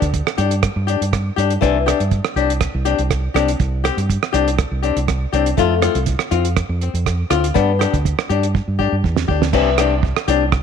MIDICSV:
0, 0, Header, 1, 4, 480
1, 0, Start_track
1, 0, Key_signature, 0, "major"
1, 0, Tempo, 495050
1, 1564, Time_signature, 4, 2, 24, 8
1, 10305, End_track
2, 0, Start_track
2, 0, Title_t, "Nylon-string guitar"
2, 0, Program_c, 0, 24
2, 365, Note_on_c, 0, 67, 57
2, 390, Note_on_c, 0, 62, 45
2, 514, Note_off_c, 0, 67, 0
2, 526, Note_off_c, 0, 62, 0
2, 843, Note_on_c, 0, 67, 52
2, 867, Note_on_c, 0, 62, 41
2, 993, Note_off_c, 0, 67, 0
2, 1004, Note_off_c, 0, 62, 0
2, 1322, Note_on_c, 0, 67, 50
2, 1345, Note_on_c, 0, 62, 53
2, 1472, Note_off_c, 0, 67, 0
2, 1483, Note_off_c, 0, 62, 0
2, 1559, Note_on_c, 0, 52, 79
2, 1568, Note_on_c, 0, 60, 70
2, 1571, Note_on_c, 0, 62, 87
2, 1574, Note_on_c, 0, 67, 79
2, 1710, Note_off_c, 0, 52, 0
2, 1715, Note_off_c, 0, 60, 0
2, 1716, Note_off_c, 0, 62, 0
2, 1718, Note_off_c, 0, 67, 0
2, 1806, Note_on_c, 0, 67, 51
2, 1812, Note_on_c, 0, 62, 48
2, 1954, Note_off_c, 0, 67, 0
2, 1957, Note_off_c, 0, 62, 0
2, 2290, Note_on_c, 0, 67, 56
2, 2299, Note_on_c, 0, 62, 51
2, 2309, Note_on_c, 0, 60, 42
2, 2436, Note_off_c, 0, 67, 0
2, 2440, Note_off_c, 0, 62, 0
2, 2445, Note_off_c, 0, 60, 0
2, 2764, Note_on_c, 0, 67, 60
2, 2773, Note_on_c, 0, 62, 55
2, 2785, Note_on_c, 0, 60, 46
2, 2913, Note_off_c, 0, 67, 0
2, 2917, Note_off_c, 0, 62, 0
2, 2923, Note_off_c, 0, 60, 0
2, 3241, Note_on_c, 0, 67, 53
2, 3252, Note_on_c, 0, 62, 56
2, 3261, Note_on_c, 0, 60, 49
2, 3391, Note_off_c, 0, 67, 0
2, 3397, Note_off_c, 0, 62, 0
2, 3401, Note_off_c, 0, 60, 0
2, 3721, Note_on_c, 0, 67, 58
2, 3744, Note_on_c, 0, 60, 43
2, 3871, Note_off_c, 0, 67, 0
2, 3882, Note_off_c, 0, 60, 0
2, 4195, Note_on_c, 0, 67, 61
2, 4205, Note_on_c, 0, 62, 60
2, 4216, Note_on_c, 0, 60, 44
2, 4348, Note_off_c, 0, 67, 0
2, 4353, Note_off_c, 0, 62, 0
2, 4359, Note_off_c, 0, 60, 0
2, 4679, Note_on_c, 0, 67, 57
2, 4688, Note_on_c, 0, 62, 51
2, 4699, Note_on_c, 0, 60, 46
2, 4830, Note_off_c, 0, 67, 0
2, 4835, Note_off_c, 0, 62, 0
2, 4840, Note_off_c, 0, 60, 0
2, 5164, Note_on_c, 0, 67, 56
2, 5176, Note_on_c, 0, 62, 54
2, 5184, Note_on_c, 0, 60, 50
2, 5313, Note_off_c, 0, 67, 0
2, 5319, Note_off_c, 0, 62, 0
2, 5323, Note_off_c, 0, 60, 0
2, 5402, Note_on_c, 0, 57, 77
2, 5414, Note_on_c, 0, 60, 80
2, 5420, Note_on_c, 0, 65, 95
2, 5552, Note_off_c, 0, 57, 0
2, 5558, Note_off_c, 0, 60, 0
2, 5561, Note_off_c, 0, 65, 0
2, 5640, Note_on_c, 0, 65, 58
2, 5660, Note_on_c, 0, 60, 40
2, 5791, Note_off_c, 0, 65, 0
2, 5801, Note_off_c, 0, 60, 0
2, 6119, Note_on_c, 0, 65, 63
2, 6143, Note_on_c, 0, 60, 50
2, 6271, Note_off_c, 0, 65, 0
2, 6283, Note_off_c, 0, 60, 0
2, 6619, Note_on_c, 0, 60, 45
2, 6761, Note_off_c, 0, 60, 0
2, 7081, Note_on_c, 0, 65, 63
2, 7103, Note_on_c, 0, 60, 42
2, 7232, Note_off_c, 0, 65, 0
2, 7243, Note_off_c, 0, 60, 0
2, 7313, Note_on_c, 0, 59, 73
2, 7319, Note_on_c, 0, 62, 83
2, 7328, Note_on_c, 0, 67, 85
2, 7469, Note_off_c, 0, 59, 0
2, 7471, Note_off_c, 0, 62, 0
2, 7476, Note_off_c, 0, 67, 0
2, 7555, Note_on_c, 0, 67, 52
2, 7576, Note_on_c, 0, 62, 46
2, 7709, Note_off_c, 0, 67, 0
2, 7720, Note_off_c, 0, 62, 0
2, 8041, Note_on_c, 0, 67, 50
2, 8059, Note_on_c, 0, 62, 46
2, 8193, Note_off_c, 0, 67, 0
2, 8201, Note_off_c, 0, 62, 0
2, 8520, Note_on_c, 0, 67, 58
2, 8535, Note_on_c, 0, 62, 43
2, 8672, Note_off_c, 0, 67, 0
2, 8679, Note_off_c, 0, 62, 0
2, 8997, Note_on_c, 0, 67, 54
2, 9020, Note_on_c, 0, 62, 47
2, 9151, Note_off_c, 0, 67, 0
2, 9162, Note_off_c, 0, 62, 0
2, 9239, Note_on_c, 0, 52, 74
2, 9248, Note_on_c, 0, 62, 83
2, 9249, Note_on_c, 0, 60, 89
2, 9255, Note_on_c, 0, 67, 79
2, 9392, Note_off_c, 0, 52, 0
2, 9396, Note_off_c, 0, 62, 0
2, 9397, Note_off_c, 0, 60, 0
2, 9400, Note_off_c, 0, 67, 0
2, 9486, Note_on_c, 0, 67, 54
2, 9499, Note_on_c, 0, 62, 53
2, 9508, Note_on_c, 0, 60, 46
2, 9635, Note_off_c, 0, 67, 0
2, 9642, Note_off_c, 0, 62, 0
2, 9646, Note_off_c, 0, 60, 0
2, 9965, Note_on_c, 0, 67, 67
2, 9979, Note_on_c, 0, 62, 64
2, 9987, Note_on_c, 0, 60, 43
2, 10114, Note_off_c, 0, 67, 0
2, 10121, Note_off_c, 0, 62, 0
2, 10125, Note_off_c, 0, 60, 0
2, 10305, End_track
3, 0, Start_track
3, 0, Title_t, "Fingered electric bass"
3, 0, Program_c, 1, 33
3, 16, Note_on_c, 1, 38, 75
3, 201, Note_off_c, 1, 38, 0
3, 370, Note_on_c, 1, 43, 78
3, 653, Note_off_c, 1, 43, 0
3, 736, Note_on_c, 1, 43, 82
3, 921, Note_off_c, 1, 43, 0
3, 981, Note_on_c, 1, 43, 64
3, 1253, Note_off_c, 1, 43, 0
3, 1333, Note_on_c, 1, 43, 77
3, 1517, Note_off_c, 1, 43, 0
3, 1574, Note_on_c, 1, 36, 86
3, 1855, Note_off_c, 1, 36, 0
3, 1939, Note_on_c, 1, 43, 70
3, 2123, Note_off_c, 1, 43, 0
3, 2286, Note_on_c, 1, 36, 74
3, 2570, Note_off_c, 1, 36, 0
3, 2660, Note_on_c, 1, 36, 82
3, 2843, Note_off_c, 1, 36, 0
3, 2896, Note_on_c, 1, 36, 73
3, 3169, Note_off_c, 1, 36, 0
3, 3243, Note_on_c, 1, 36, 84
3, 3430, Note_off_c, 1, 36, 0
3, 3487, Note_on_c, 1, 36, 81
3, 3771, Note_off_c, 1, 36, 0
3, 3851, Note_on_c, 1, 43, 74
3, 4038, Note_off_c, 1, 43, 0
3, 4204, Note_on_c, 1, 36, 81
3, 4490, Note_off_c, 1, 36, 0
3, 4569, Note_on_c, 1, 36, 79
3, 4757, Note_off_c, 1, 36, 0
3, 4811, Note_on_c, 1, 36, 73
3, 5087, Note_off_c, 1, 36, 0
3, 5168, Note_on_c, 1, 36, 86
3, 5354, Note_off_c, 1, 36, 0
3, 5410, Note_on_c, 1, 41, 80
3, 5694, Note_off_c, 1, 41, 0
3, 5769, Note_on_c, 1, 36, 83
3, 5957, Note_off_c, 1, 36, 0
3, 6121, Note_on_c, 1, 41, 87
3, 6408, Note_off_c, 1, 41, 0
3, 6487, Note_on_c, 1, 41, 83
3, 6676, Note_off_c, 1, 41, 0
3, 6726, Note_on_c, 1, 41, 72
3, 7004, Note_off_c, 1, 41, 0
3, 7083, Note_on_c, 1, 38, 80
3, 7271, Note_off_c, 1, 38, 0
3, 7328, Note_on_c, 1, 43, 81
3, 7613, Note_off_c, 1, 43, 0
3, 7693, Note_on_c, 1, 38, 73
3, 7880, Note_off_c, 1, 38, 0
3, 8045, Note_on_c, 1, 43, 82
3, 8331, Note_off_c, 1, 43, 0
3, 8412, Note_on_c, 1, 43, 71
3, 8600, Note_off_c, 1, 43, 0
3, 8651, Note_on_c, 1, 43, 74
3, 8740, Note_off_c, 1, 43, 0
3, 8769, Note_on_c, 1, 40, 80
3, 8984, Note_off_c, 1, 40, 0
3, 9006, Note_on_c, 1, 38, 81
3, 9222, Note_off_c, 1, 38, 0
3, 9243, Note_on_c, 1, 36, 87
3, 9805, Note_off_c, 1, 36, 0
3, 9965, Note_on_c, 1, 36, 89
3, 10305, Note_off_c, 1, 36, 0
3, 10305, End_track
4, 0, Start_track
4, 0, Title_t, "Drums"
4, 19, Note_on_c, 9, 36, 58
4, 19, Note_on_c, 9, 42, 44
4, 116, Note_off_c, 9, 36, 0
4, 116, Note_off_c, 9, 42, 0
4, 133, Note_on_c, 9, 36, 64
4, 133, Note_on_c, 9, 42, 52
4, 230, Note_off_c, 9, 36, 0
4, 230, Note_off_c, 9, 42, 0
4, 261, Note_on_c, 9, 37, 67
4, 357, Note_off_c, 9, 37, 0
4, 370, Note_on_c, 9, 42, 46
4, 466, Note_off_c, 9, 42, 0
4, 495, Note_on_c, 9, 42, 53
4, 592, Note_off_c, 9, 42, 0
4, 609, Note_on_c, 9, 37, 74
4, 609, Note_on_c, 9, 42, 52
4, 612, Note_on_c, 9, 36, 87
4, 706, Note_off_c, 9, 37, 0
4, 706, Note_off_c, 9, 42, 0
4, 708, Note_off_c, 9, 36, 0
4, 855, Note_on_c, 9, 42, 45
4, 952, Note_off_c, 9, 42, 0
4, 989, Note_on_c, 9, 42, 49
4, 1086, Note_off_c, 9, 42, 0
4, 1095, Note_on_c, 9, 36, 68
4, 1097, Note_on_c, 9, 37, 67
4, 1097, Note_on_c, 9, 42, 42
4, 1192, Note_off_c, 9, 36, 0
4, 1194, Note_off_c, 9, 37, 0
4, 1194, Note_off_c, 9, 42, 0
4, 1341, Note_on_c, 9, 42, 49
4, 1438, Note_off_c, 9, 42, 0
4, 1458, Note_on_c, 9, 42, 47
4, 1555, Note_off_c, 9, 42, 0
4, 1573, Note_on_c, 9, 36, 82
4, 1577, Note_on_c, 9, 42, 42
4, 1670, Note_off_c, 9, 36, 0
4, 1674, Note_off_c, 9, 42, 0
4, 1822, Note_on_c, 9, 37, 66
4, 1822, Note_on_c, 9, 42, 50
4, 1919, Note_off_c, 9, 37, 0
4, 1919, Note_off_c, 9, 42, 0
4, 1942, Note_on_c, 9, 42, 44
4, 2039, Note_off_c, 9, 42, 0
4, 2048, Note_on_c, 9, 42, 41
4, 2051, Note_on_c, 9, 36, 72
4, 2145, Note_off_c, 9, 42, 0
4, 2148, Note_off_c, 9, 36, 0
4, 2177, Note_on_c, 9, 37, 74
4, 2274, Note_off_c, 9, 37, 0
4, 2297, Note_on_c, 9, 42, 42
4, 2394, Note_off_c, 9, 42, 0
4, 2425, Note_on_c, 9, 42, 53
4, 2522, Note_off_c, 9, 42, 0
4, 2528, Note_on_c, 9, 37, 69
4, 2528, Note_on_c, 9, 42, 49
4, 2530, Note_on_c, 9, 36, 86
4, 2625, Note_off_c, 9, 37, 0
4, 2625, Note_off_c, 9, 42, 0
4, 2627, Note_off_c, 9, 36, 0
4, 2768, Note_on_c, 9, 42, 47
4, 2865, Note_off_c, 9, 42, 0
4, 2895, Note_on_c, 9, 42, 43
4, 2992, Note_off_c, 9, 42, 0
4, 3010, Note_on_c, 9, 36, 59
4, 3011, Note_on_c, 9, 37, 60
4, 3011, Note_on_c, 9, 42, 49
4, 3107, Note_off_c, 9, 36, 0
4, 3108, Note_off_c, 9, 37, 0
4, 3108, Note_off_c, 9, 42, 0
4, 3257, Note_on_c, 9, 37, 66
4, 3257, Note_on_c, 9, 42, 47
4, 3354, Note_off_c, 9, 37, 0
4, 3354, Note_off_c, 9, 42, 0
4, 3378, Note_on_c, 9, 42, 49
4, 3475, Note_off_c, 9, 42, 0
4, 3487, Note_on_c, 9, 42, 44
4, 3490, Note_on_c, 9, 36, 79
4, 3584, Note_off_c, 9, 42, 0
4, 3587, Note_off_c, 9, 36, 0
4, 3733, Note_on_c, 9, 37, 77
4, 3733, Note_on_c, 9, 42, 55
4, 3830, Note_off_c, 9, 37, 0
4, 3830, Note_off_c, 9, 42, 0
4, 3860, Note_on_c, 9, 42, 48
4, 3957, Note_off_c, 9, 42, 0
4, 3971, Note_on_c, 9, 36, 65
4, 3977, Note_on_c, 9, 42, 55
4, 4068, Note_off_c, 9, 36, 0
4, 4074, Note_off_c, 9, 42, 0
4, 4099, Note_on_c, 9, 37, 71
4, 4196, Note_off_c, 9, 37, 0
4, 4208, Note_on_c, 9, 42, 48
4, 4305, Note_off_c, 9, 42, 0
4, 4341, Note_on_c, 9, 42, 54
4, 4438, Note_off_c, 9, 42, 0
4, 4446, Note_on_c, 9, 37, 70
4, 4446, Note_on_c, 9, 42, 54
4, 4447, Note_on_c, 9, 36, 89
4, 4543, Note_off_c, 9, 37, 0
4, 4543, Note_off_c, 9, 42, 0
4, 4544, Note_off_c, 9, 36, 0
4, 4686, Note_on_c, 9, 42, 46
4, 4783, Note_off_c, 9, 42, 0
4, 4815, Note_on_c, 9, 42, 51
4, 4912, Note_off_c, 9, 42, 0
4, 4928, Note_on_c, 9, 36, 62
4, 4928, Note_on_c, 9, 37, 63
4, 4928, Note_on_c, 9, 42, 47
4, 5025, Note_off_c, 9, 36, 0
4, 5025, Note_off_c, 9, 37, 0
4, 5025, Note_off_c, 9, 42, 0
4, 5173, Note_on_c, 9, 42, 47
4, 5270, Note_off_c, 9, 42, 0
4, 5297, Note_on_c, 9, 42, 50
4, 5394, Note_off_c, 9, 42, 0
4, 5409, Note_on_c, 9, 36, 77
4, 5409, Note_on_c, 9, 42, 50
4, 5506, Note_off_c, 9, 36, 0
4, 5506, Note_off_c, 9, 42, 0
4, 5647, Note_on_c, 9, 37, 75
4, 5647, Note_on_c, 9, 42, 48
4, 5744, Note_off_c, 9, 37, 0
4, 5744, Note_off_c, 9, 42, 0
4, 5770, Note_on_c, 9, 42, 44
4, 5867, Note_off_c, 9, 42, 0
4, 5877, Note_on_c, 9, 42, 47
4, 5884, Note_on_c, 9, 36, 65
4, 5974, Note_off_c, 9, 42, 0
4, 5981, Note_off_c, 9, 36, 0
4, 6002, Note_on_c, 9, 37, 66
4, 6099, Note_off_c, 9, 37, 0
4, 6123, Note_on_c, 9, 42, 43
4, 6220, Note_off_c, 9, 42, 0
4, 6251, Note_on_c, 9, 42, 46
4, 6348, Note_off_c, 9, 42, 0
4, 6366, Note_on_c, 9, 36, 83
4, 6366, Note_on_c, 9, 37, 66
4, 6366, Note_on_c, 9, 42, 50
4, 6463, Note_off_c, 9, 36, 0
4, 6463, Note_off_c, 9, 37, 0
4, 6463, Note_off_c, 9, 42, 0
4, 6607, Note_on_c, 9, 42, 45
4, 6704, Note_off_c, 9, 42, 0
4, 6736, Note_on_c, 9, 42, 45
4, 6833, Note_off_c, 9, 42, 0
4, 6847, Note_on_c, 9, 36, 63
4, 6849, Note_on_c, 9, 37, 57
4, 6849, Note_on_c, 9, 42, 43
4, 6944, Note_off_c, 9, 36, 0
4, 6946, Note_off_c, 9, 37, 0
4, 6946, Note_off_c, 9, 42, 0
4, 7084, Note_on_c, 9, 37, 66
4, 7084, Note_on_c, 9, 42, 55
4, 7181, Note_off_c, 9, 37, 0
4, 7181, Note_off_c, 9, 42, 0
4, 7214, Note_on_c, 9, 42, 50
4, 7311, Note_off_c, 9, 42, 0
4, 7326, Note_on_c, 9, 42, 50
4, 7327, Note_on_c, 9, 36, 87
4, 7423, Note_off_c, 9, 42, 0
4, 7424, Note_off_c, 9, 36, 0
4, 7573, Note_on_c, 9, 37, 70
4, 7573, Note_on_c, 9, 42, 50
4, 7670, Note_off_c, 9, 37, 0
4, 7670, Note_off_c, 9, 42, 0
4, 7694, Note_on_c, 9, 36, 57
4, 7696, Note_on_c, 9, 42, 43
4, 7791, Note_off_c, 9, 36, 0
4, 7793, Note_off_c, 9, 42, 0
4, 7808, Note_on_c, 9, 36, 64
4, 7812, Note_on_c, 9, 42, 48
4, 7905, Note_off_c, 9, 36, 0
4, 7909, Note_off_c, 9, 42, 0
4, 7938, Note_on_c, 9, 37, 74
4, 8035, Note_off_c, 9, 37, 0
4, 8051, Note_on_c, 9, 42, 45
4, 8148, Note_off_c, 9, 42, 0
4, 8177, Note_on_c, 9, 42, 50
4, 8274, Note_off_c, 9, 42, 0
4, 8288, Note_on_c, 9, 36, 87
4, 8385, Note_off_c, 9, 36, 0
4, 8528, Note_on_c, 9, 36, 51
4, 8624, Note_off_c, 9, 36, 0
4, 8766, Note_on_c, 9, 36, 70
4, 8863, Note_off_c, 9, 36, 0
4, 8886, Note_on_c, 9, 38, 55
4, 8983, Note_off_c, 9, 38, 0
4, 9004, Note_on_c, 9, 36, 75
4, 9100, Note_off_c, 9, 36, 0
4, 9132, Note_on_c, 9, 38, 58
4, 9229, Note_off_c, 9, 38, 0
4, 9243, Note_on_c, 9, 36, 93
4, 9244, Note_on_c, 9, 49, 80
4, 9340, Note_off_c, 9, 36, 0
4, 9341, Note_off_c, 9, 49, 0
4, 9482, Note_on_c, 9, 37, 82
4, 9482, Note_on_c, 9, 42, 57
4, 9579, Note_off_c, 9, 37, 0
4, 9579, Note_off_c, 9, 42, 0
4, 9725, Note_on_c, 9, 36, 91
4, 9822, Note_off_c, 9, 36, 0
4, 9856, Note_on_c, 9, 37, 70
4, 9953, Note_off_c, 9, 37, 0
4, 9970, Note_on_c, 9, 42, 49
4, 10066, Note_off_c, 9, 42, 0
4, 10203, Note_on_c, 9, 37, 72
4, 10204, Note_on_c, 9, 36, 89
4, 10300, Note_off_c, 9, 37, 0
4, 10301, Note_off_c, 9, 36, 0
4, 10305, End_track
0, 0, End_of_file